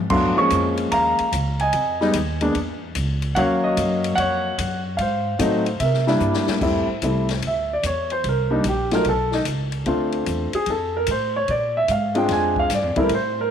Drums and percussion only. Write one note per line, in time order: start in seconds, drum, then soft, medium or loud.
0.10 kick medium
0.10 crash medium
0.50 kick soft
0.50 hi-hat pedal medium
0.50 ride medium
0.77 ride medium
0.92 kick soft
0.92 ride medium
1.18 ride medium
1.32 kick soft
1.32 hi-hat pedal medium
1.32 ride medium
1.59 ride soft
1.73 kick soft
1.73 ride medium
2.01 snare soft
2.13 kick soft
2.13 hi-hat pedal medium
2.13 ride medium
2.41 ride medium
2.55 kick soft
2.55 ride medium
2.95 kick soft
2.95 hi-hat pedal medium
2.95 ride medium
3.22 ride soft
3.36 kick soft
3.36 ride medium
3.77 kick soft
3.77 hi-hat pedal soft
3.77 ride medium
4.04 ride medium
4.18 kick soft
4.18 ride medium
4.58 kick soft
4.58 hi-hat pedal medium
4.58 ride medium
4.98 kick soft
4.98 ride medium
5.39 kick soft
5.39 hi-hat pedal medium
5.39 ride medium
5.66 ride medium
5.80 kick soft
5.80 ride medium
5.94 snare soft
6.07 snare soft
6.20 hi-hat pedal medium
6.34 snare medium
6.47 snare medium
6.61 kick medium
6.61 crash medium
7.02 kick soft
7.02 hi-hat pedal medium
7.02 ride medium
7.29 snare medium
7.29 ride soft
7.42 kick soft
7.42 ride medium
7.83 kick soft
7.83 hi-hat pedal medium
7.83 ride medium
8.10 ride soft
8.24 kick soft
8.24 ride medium
8.64 kick soft
8.64 hi-hat pedal soft
8.64 ride medium
8.91 snare medium
8.91 ride medium
9.04 kick soft
9.04 ride medium
9.32 snare medium
9.45 kick soft
9.45 hi-hat pedal medium
9.45 ride medium
9.72 ride soft
9.86 kick soft
9.86 ride medium
10.12 ride soft
10.26 kick soft
10.26 hi-hat pedal medium
10.26 ride medium
10.53 ride medium
10.66 kick soft
10.66 ride medium
11.06 kick soft
11.06 hi-hat pedal medium
11.06 ride medium
11.48 kick soft
11.48 ride medium
11.88 kick soft
11.88 hi-hat pedal medium
11.88 ride medium
12.15 ride soft
12.29 kick soft
12.29 snare soft
12.29 ride medium
12.56 kick medium
12.70 kick soft
12.70 snare soft
12.70 hi-hat pedal medium
12.70 ride medium
12.96 kick medium
12.96 ride soft
13.09 kick soft
13.09 ride medium